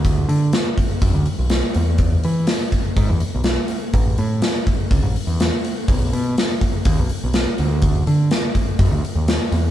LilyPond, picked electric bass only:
\new Staff \with { instrumentName = "Picked electric bass" } { \clef bass \time 4/4 \key a \lydian \tempo 4 = 124 d,8 d8 r4 fis,16 d,16 r16 b,,8 r16 e,8~ | e,8 e8 r4 gis,16 e,16 r16 b,,8 r8. | a,,8 a,8 r4 cis,16 a,,16 r16 e,8 r8. | b,,8 b,8 r4 dis,16 b,,16 r16 b,,8 r16 d,8~ |
d,8 d8 r4 fis,16 d,16 r16 dis,8 r16 e,8 | }